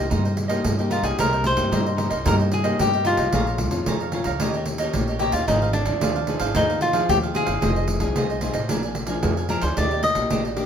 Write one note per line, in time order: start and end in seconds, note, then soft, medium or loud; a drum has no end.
0.00 0.13 C2 medium
0.10 0.57 G2 medium
0.10 0.62 C3 medium
0.10 0.47 A#3 soft
0.10 0.23 D#4 medium
0.10 0.47 D#4 soft
0.10 0.47 G4 soft
0.10 0.23 A#4 medium
0.10 0.24 C5 medium
0.10 0.23 D#5 medium
0.10 pandeiro medium
0.24 0.36 A#4 soft
0.24 0.36 C5 soft
0.24 0.37 D#5 soft
0.24 pandeiro soft
0.37 muted cavaquinho stroke soft
0.37 pandeiro medium
0.48 0.73 A#3 medium
0.48 0.73 D#4 medium
0.48 0.73 G4 medium
0.48 0.76 A#4 medium
0.48 0.76 C5 medium
0.48 0.75 D#5 medium
0.48 pandeiro medium
0.64 0.99 G2 medium
0.64 1.16 G2 medium
0.64 pandeiro medium
0.78 1.01 A#3 medium
0.78 1.01 D#4 medium
0.78 1.01 G4 medium
0.78 0.90 A#4 soft
0.78 0.90 C5 soft
0.78 0.91 D#5 soft
0.78 pandeiro soft
0.90 1.03 D#4 medium
0.90 1.04 F4 medium
0.90 1.03 A#4 medium
0.90 1.02 C5 medium
0.90 1.01 D#5 medium
0.90 pandeiro medium
1.02 1.15 C2 medium
1.02 1.53 A#3 medium
1.02 1.53 D#4 medium
1.02 1.54 G4 medium
1.02 1.18 G#4 medium
1.02 1.17 A#4 soft
1.02 1.16 C5 soft
1.02 1.16 D#5 soft
1.02 pandeiro medium
1.18 1.58 C2 medium
1.18 1.69 C3 medium
1.18 1.31 D#4 medium
1.18 1.31 A#4 medium
1.18 1.44 A#4 loud
1.18 1.31 C5 medium
1.18 1.32 D#5 medium
1.18 pandeiro medium
1.33 1.44 A#4 soft
1.33 1.44 C5 soft
1.33 1.44 D#5 soft
1.33 pandeiro soft
1.44 2.29 C5 medium
1.44 muted cavaquinho stroke soft
1.44 pandeiro medium
1.56 1.69 G2 medium
1.56 1.94 A#3 medium
1.56 1.94 D#4 medium
1.56 1.94 G4 medium
1.56 pandeiro medium
1.72 2.06 G2 medium
1.72 2.23 G2 medium
1.72 1.84 D#4 medium
1.72 1.84 A#4 medium
1.72 1.85 C5 medium
1.72 1.85 D#5 medium
1.72 pandeiro medium
1.86 1.96 A#4 soft
1.86 1.97 C5 soft
1.86 1.97 D#5 soft
1.86 pandeiro soft
1.96 2.14 A#3 medium
1.96 2.10 D#4 medium
1.96 2.14 D#4 medium
1.96 2.15 G4 medium
1.96 2.10 A#4 soft
1.96 2.10 C5 soft
1.96 2.09 D#5 soft
1.96 pandeiro medium
2.10 2.27 C2 medium
2.10 2.24 A#4 medium
2.10 2.24 C5 medium
2.10 2.23 D#5 medium
2.10 pandeiro medium
2.25 2.71 G2 medium
2.25 2.77 C3 medium
2.25 2.51 A#3 soft
2.25 2.38 D#4 medium
2.25 2.51 D#4 medium
2.25 2.52 G4 medium
2.25 2.38 A#4 medium
2.25 2.34 A#4 loud
2.25 2.38 C5 medium
2.25 2.39 D#5 medium
2.25 pandeiro medium
2.39 2.51 A#4 soft
2.39 2.51 C5 soft
2.39 2.52 D#5 soft
2.39 pandeiro soft
2.51 2.78 G#4 medium
2.51 muted cavaquinho stroke soft
2.51 pandeiro medium
2.64 3.01 A#3 medium
2.64 3.01 D#4 medium
2.64 3.01 G4 medium
2.64 2.92 A#4 medium
2.64 2.91 C5 medium
2.64 2.91 D#5 medium
2.64 pandeiro medium
2.79 3.14 G2 medium
2.79 3.31 G2 medium
2.79 3.08 G4 medium
2.79 pandeiro medium
2.93 3.04 A#4 soft
2.93 3.05 C5 soft
2.93 3.05 D#5 soft
2.93 pandeiro soft
3.04 3.28 A#3 medium
3.04 3.18 D#4 medium
3.04 3.29 D#4 medium
3.04 4.10 F4 medium
3.04 3.29 G4 medium
3.04 3.18 A#4 medium
3.04 3.17 C5 medium
3.04 3.16 D#5 medium
3.04 pandeiro medium
3.17 3.30 C2 medium
3.17 3.32 A#4 soft
3.17 3.31 C5 soft
3.17 3.31 D#5 soft
3.17 pandeiro medium
3.33 3.71 A#1 medium
3.33 3.84 A#2 medium
3.33 3.69 G#3 medium
3.33 3.69 C#4 medium
3.33 3.70 F4 medium
3.33 3.46 G#4 medium
3.33 3.46 C#5 medium
3.33 3.46 F5 medium
3.33 3.46 A#5 medium
3.33 pandeiro medium
3.47 3.58 C#5 soft
3.47 3.58 F5 soft
3.47 3.59 A#5 soft
3.47 pandeiro soft
3.58 muted cavaquinho stroke soft
3.58 pandeiro medium
3.71 3.84 F2 medium
3.71 4.08 G#3 medium
3.71 4.08 C#4 medium
3.71 4.09 F4 medium
3.71 pandeiro medium
3.86 4.38 F2 medium
3.86 4.21 F2 medium
3.86 3.99 G#4 medium
3.86 3.99 C#5 medium
3.86 4.00 F5 medium
3.86 4.00 A#5 medium
3.86 pandeiro medium
4.00 4.12 C#5 soft
4.00 4.13 F5 soft
4.00 4.13 A#5 soft
4.00 pandeiro soft
4.12 4.29 G#3 medium
4.12 4.29 C#4 medium
4.12 4.29 F4 medium
4.12 4.26 G#4 soft
4.12 4.26 C#5 soft
4.12 4.25 F5 medium
4.12 4.24 A#5 medium
4.12 pandeiro medium
4.24 4.41 C#2 medium
4.24 4.40 C#5 medium
4.24 4.39 F5 medium
4.24 4.39 A#5 medium
4.24 pandeiro medium
4.40 4.86 D#2 medium
4.40 4.92 D#3 medium
4.40 4.77 A#3 soft
4.40 4.77 C#4 medium
4.40 4.53 D#4 medium
4.40 4.77 G4 medium
4.40 4.53 G4 medium
4.40 4.54 C#5 medium
4.40 4.54 D#5 medium
4.40 pandeiro medium
4.54 4.66 G4 soft
4.54 4.67 C#5 soft
4.54 4.67 D#5 medium
4.54 pandeiro soft
4.66 muted cavaquinho stroke soft
4.66 pandeiro medium
4.78 5.16 A#3 medium
4.78 5.17 C#4 medium
4.78 5.17 G4 medium
4.78 5.07 G4 medium
4.78 5.06 C#5 medium
4.78 5.06 D#5 medium
4.78 pandeiro medium
4.93 5.28 A#1 medium
4.93 5.45 A#2 medium
4.93 pandeiro medium
5.08 5.20 G4 soft
5.08 5.21 C#5 soft
5.08 5.20 D#5 soft
5.08 pandeiro soft
5.19 5.43 A#3 medium
5.19 5.43 C#4 medium
5.19 5.33 D#4 medium
5.19 5.33 G4 medium
5.19 5.44 G4 medium
5.19 5.34 G4 medium
5.19 5.33 C#5 medium
5.19 5.32 D#5 medium
5.19 pandeiro medium
5.32 5.45 D#2 medium
5.32 5.47 F4 medium
5.32 5.47 G4 soft
5.32 5.47 C#5 soft
5.32 5.46 D#5 soft
5.32 pandeiro medium
5.48 5.88 G#1 medium
5.48 5.99 G#2 medium
5.48 5.73 F3 medium
5.48 5.74 C4 medium
5.48 5.73 D#4 medium
5.48 5.74 D#4 medium
5.48 5.60 F4 medium
5.48 5.61 G#4 medium
5.48 5.61 C5 medium
5.48 5.61 F5 medium
5.48 pandeiro medium
5.62 5.73 G#4 soft
5.62 5.73 C5 soft
5.62 5.73 F5 soft
5.62 pandeiro soft
5.73 6.56 D4 medium
5.73 muted cavaquinho stroke soft
5.73 pandeiro medium
5.85 5.99 D#2 medium
5.85 6.23 F3 medium
5.85 6.23 C4 medium
5.85 pandeiro medium
6.01 6.36 D#2 medium
6.01 6.53 D#3 medium
6.01 6.14 F4 medium
6.01 6.14 G#4 medium
6.01 6.14 C5 medium
6.01 6.14 F5 medium
6.01 pandeiro medium
6.16 6.28 G#4 soft
6.16 6.28 C5 soft
6.16 6.28 F5 soft
6.16 pandeiro soft
6.27 6.51 F3 medium
6.27 6.51 C4 medium
6.27 6.51 D#4 medium
6.27 6.41 F4 soft
6.27 6.41 G#4 soft
6.27 6.40 C5 medium
6.27 6.39 F5 medium
6.27 pandeiro medium
6.40 6.57 G#1 medium
6.40 6.54 G#4 medium
6.40 6.54 C5 medium
6.40 6.53 F5 medium
6.40 pandeiro medium
6.55 7.01 D#2 medium
6.55 7.07 G#2 medium
6.55 6.91 F3 medium
6.55 6.92 C4 medium
6.55 6.82 D#4 medium
6.55 6.92 D#4 medium
6.55 6.67 F4 medium
6.55 6.68 G#4 medium
6.55 6.68 C5 medium
6.55 6.68 F5 medium
6.55 pandeiro medium
6.69 6.80 G#4 soft
6.69 6.80 C5 soft
6.69 6.81 F5 soft
6.69 pandeiro soft
6.81 7.10 F4 medium
6.81 muted cavaquinho stroke soft
6.81 pandeiro medium
6.93 7.30 F3 medium
6.93 7.31 C4 medium
6.93 7.31 D#4 medium
6.93 7.21 G#4 medium
6.93 7.21 C5 medium
6.93 7.20 F5 medium
6.93 pandeiro medium
7.09 7.43 D#2 medium
7.09 7.60 D#3 medium
7.09 7.17 G4 medium
7.09 pandeiro medium
7.23 7.33 G#4 soft
7.23 7.34 C5 soft
7.23 7.35 F5 soft
7.23 pandeiro soft
7.34 7.51 F3 medium
7.34 7.51 C4 medium
7.34 7.52 D#4 medium
7.34 7.47 F4 medium
7.34 7.46 G#4 medium
7.34 8.39 G#4 medium
7.34 7.45 C5 medium
7.34 7.44 F5 medium
7.34 pandeiro medium
7.45 7.59 G1 medium
7.45 7.60 G#4 soft
7.45 7.60 C5 soft
7.45 7.60 F5 soft
7.45 pandeiro medium
7.61 8.02 F1 medium
7.61 8.14 F3 medium
7.61 7.99 C4 medium
7.61 7.99 D#4 medium
7.61 7.74 F4 medium
7.61 7.74 G#4 medium
7.61 7.99 G#4 medium
7.61 7.75 C5 medium
7.61 7.75 D#5 medium
7.61 pandeiro medium
7.76 7.87 G#4 soft
7.76 7.88 C5 soft
7.76 7.88 D#5 soft
7.76 pandeiro soft
7.88 muted cavaquinho stroke soft
7.88 pandeiro medium
8.00 8.13 C2 medium
8.00 8.38 C4 medium
8.00 8.38 D#4 medium
8.00 8.38 G#4 medium
8.00 pandeiro medium
8.16 8.50 C2 medium
8.16 8.68 C3 medium
8.16 8.28 F4 medium
8.16 8.29 G#4 medium
8.16 8.29 C5 medium
8.16 8.29 D#5 medium
8.16 pandeiro medium
8.30 8.41 G#4 soft
8.30 8.42 C5 soft
8.30 8.42 D#5 soft
8.30 pandeiro soft
8.41 8.59 C4 medium
8.41 8.59 D#4 medium
8.41 8.55 F4 medium
8.41 8.54 G#4 medium
8.41 8.59 G#4 medium
8.41 8.53 C5 medium
8.41 8.53 D#5 medium
8.41 pandeiro medium
8.54 8.70 A1 medium
8.54 8.68 G#4 soft
8.54 8.68 C5 medium
8.54 8.67 D#5 medium
8.54 pandeiro medium
8.69 9.16 A#1 medium
8.69 9.21 A#2 medium
8.69 8.95 F3 medium
8.69 8.95 G#3 soft
8.69 8.82 D4 medium
8.69 8.96 D4 medium
8.69 8.82 A#4 medium
8.69 8.82 D5 medium
8.69 8.82 G#5 medium
8.69 pandeiro medium
8.83 8.95 A#4 soft
8.83 8.95 D5 soft
8.83 8.95 G#5 soft
8.83 pandeiro soft
8.95 muted cavaquinho stroke soft
8.95 pandeiro medium
9.07 9.45 F3 medium
9.07 9.45 G#3 medium
9.07 9.46 D4 medium
9.07 9.36 A#4 medium
9.07 9.35 D5 medium
9.07 9.35 G#5 medium
9.07 pandeiro medium
9.23 9.74 F2 medium
9.23 9.58 F2 medium
9.23 pandeiro medium
9.37 9.49 A#4 soft
9.37 9.50 D5 soft
9.37 9.49 G#5 soft
9.37 pandeiro soft
9.49 9.65 F3 medium
9.49 9.66 G#3 soft
9.49 9.62 D4 medium
9.49 9.66 D4 medium
9.49 9.62 A#4 medium
9.49 9.62 D5 medium
9.49 9.60 G#5 medium
9.49 pandeiro medium
9.61 9.74 D2 medium
9.61 9.76 A#4 soft
9.61 9.75 C5 medium
9.61 9.76 D5 soft
9.61 9.75 G#5 soft
9.61 pandeiro medium
9.77 10.17 D#2 medium
9.77 10.28 D#3 medium
9.77 10.02 A#3 medium
9.77 9.90 D4 medium
9.77 10.02 D4 medium
9.77 10.03 G4 medium
9.77 9.90 G4 medium
9.77 10.03 D5 medium
9.77 9.90 D5 medium
9.77 9.90 D#5 medium
9.77 pandeiro medium
9.91 10.03 G4 soft
9.91 10.03 D5 soft
9.91 10.03 D#5 soft
9.91 pandeiro soft
10.03 10.66 D#5 medium
10.03 muted cavaquinho stroke soft
10.03 pandeiro medium
10.15 10.28 A#1 medium
10.15 10.52 A#3 medium
10.15 10.53 G4 medium
10.15 pandeiro medium
10.30 10.65 A#1 medium
10.30 10.66 A#2 medium
10.30 10.43 D4 medium
10.30 10.43 G4 medium
10.30 10.44 D5 medium
10.30 10.44 D#5 medium
10.30 pandeiro medium
10.45 10.56 G4 soft
10.45 10.57 D5 soft
10.45 10.56 D#5 soft
10.45 pandeiro soft
10.56 10.66 A#3 medium
10.56 10.66 D4 soft
10.56 10.66 D4 medium
10.56 10.66 G4 medium
10.56 10.66 D5 medium
10.56 10.66 D#5 medium
10.56 pandeiro medium